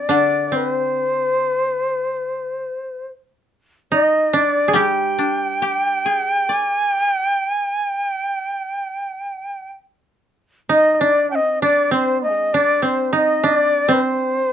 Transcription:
Already playing: C4 D5
0.09 D3 D4 D5
0.48 D5
0.52 C4 B4
0.68 C5
3.92 D#4 D#5
4.33 D4 D5
4.68 G#4
4.73 G3 G4 G5
5.18 D4
5.62 G4
6.06 G#4
6.49 D5
6.56 G#5
6.93 G5
7.55 G#5
7.92 G5
10.69 D#4 D#5
10.94 D#5
11.00 D4 D5
11.30 G5
11.35 C4 D#5
11.62 D4 D5
11.91 C4 C5
12.22 D#5
12.30 G#3
12.53 D4 D5
12.82 C4 C5
13.13 D#4 D#5
13.44 D4 D5
13.88 C4
13.92 C5

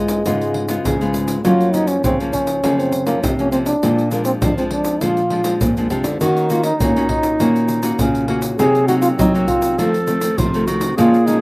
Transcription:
Already playing: G#2 G#3 B3 F4
0.08 pandeiro, shaker
0.25 G#2 C#3 G#3 B3 F4, pandeiro, shaker, surdo
0.41 pandeiro, shaker
0.54 pandeiro
0.69 G#3 B3 F4, pandeiro, shaker
0.85 G#2 C#3, pandeiro, shaker, surdo
1.01 G#3 B3 F4, pandeiro, shaker
1.14 pandeiro, shaker
1.28 pandeiro, shaker
1.45 F#2 F3 F#3 A#3 C#4 F4, pandeiro, shaker, surdo
1.61 pandeiro, shaker
1.73 F3 A#3 C#4 D#4, pandeiro, shaker
1.87 C#4, pandeiro, shaker
2.04 C#3 C4, pandeiro, shaker, surdo
2.20 F3 A#3 C#4, pandeiro, shaker
2.33 C#4, pandeiro, shaker, surdo
2.47 pandeiro, shaker
2.64 F#2 C#3 F3 A#3 C#4, pandeiro, shaker, surdo
2.79 C4, pandeiro, shaker
2.92 pandeiro, shaker
3.06 F3 A#3 C#4, pandeiro, shaker
3.23 C3, pandeiro, shaker, surdo
3.39 F3 A#3 C#4, pandeiro, shaker
3.52 F3 A#3 C4 C#4, pandeiro, shaker
3.66 D4, pandeiro, shaker
3.83 A#2 F3 G#3 D4, pandeiro, shaker, surdo
3.98 pandeiro, shaker
4.11 F3 G#3 A#3 D4, pandeiro, shaker
4.25 C4, pandeiro, shaker
4.42 F2 F3 D4, pandeiro, shaker, surdo
4.58 F3 G#3 C4 D4, pandeiro, shaker
4.71 D4, pandeiro
4.85 pandeiro, shaker
5.01 A#2 F3 G#3 D4 F4, pandeiro, shaker, surdo
5.17 pandeiro, shaker
5.30 F3 G#3 D4, pandeiro
5.44 F3 G#3 D4, pandeiro, shaker
5.61 F2 A#2, pandeiro, shaker, surdo
5.77 A#2 F3 G#3 D4, pandeiro, shaker
5.90 C3 F3 G#3 D4, pandeiro, shaker
6.04 D3, pandeiro, shaker
6.21 D#3 A#3 C#4 D#4 F#4, pandeiro, shaker, surdo
6.37 pandeiro, shaker
6.50 A#3 C#4 F4 F#4, pandeiro, shaker
6.63 D#4, pandeiro, shaker
6.80 A#2 A#3 C#4 F#4, pandeiro, shaker, surdo
6.96 A#3 C#4 F#4, pandeiro, shaker
7.09 D#4, pandeiro, surdo
7.23 pandeiro, shaker
7.40 A#2 D#3 A#3 C#4 F#4, pandeiro, shaker, surdo
7.56 pandeiro, shaker
7.68 pandeiro, shaker
7.83 A#3 C#4 F#4, pandeiro, shaker
7.99 A#2 C#3 C#4, pandeiro, shaker, surdo
8.15 pandeiro, shaker
8.28 A#3 C#4 F#4, pandeiro
8.42 pandeiro, shaker
8.59 C3 F#3 A#3 C4 D#4 G#4, pandeiro, shaker, surdo
8.75 pandeiro, shaker
8.88 F#3 A#3 D#4 F#4, pandeiro, shaker
9.02 F4, pandeiro, shaker
9.19 C3 F#3 D#4, pandeiro, shaker, surdo
9.34 F#3 A#3 D#4, pandeiro, shaker
9.48 F4, pandeiro, shaker, surdo
9.62 pandeiro, shaker
9.78 F2 D#3 F3 A3 C4 A4, pandeiro, shaker, surdo
9.94 pandeiro, shaker
10.07 D#3 A3 C4, pandeiro, shaker
10.21 D#3 A3 C4, pandeiro, shaker
10.37 C3 F3 F4, pandeiro, shaker, surdo
10.54 D#3 A3 C4, pandeiro, shaker
10.66 D#3 A3 C4 F#4, pandeiro, shaker
10.81 pandeiro, shaker
10.97 A#2 F3 G#3 C#4 F4 G#4, pandeiro, shaker, surdo
11.14 pandeiro, shaker
11.26 F3 G#3 C#4 D#4, pandeiro, shaker

